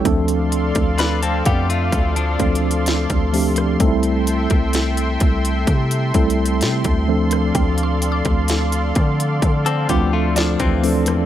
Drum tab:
HH |x--x--x--x--x--x--x--x--x--x--x-x-x-x--x--o--x--|x--x--x--x--x--x--x--x--x--x--x-x-x-x--x-----x--|x--x--x--x--x--x--x--x--x--x--x-----x--x--o--x--|
SD |------------o-----------------------o--------r--|------------o-----------------------o--------r--|------------o-----------------------o--------r--|
BD |o--------o--------o-----o-----o--------o--------|o--------o--------o-----o-----o--------o--------|o--------o--------o-----o-----o--------o--------|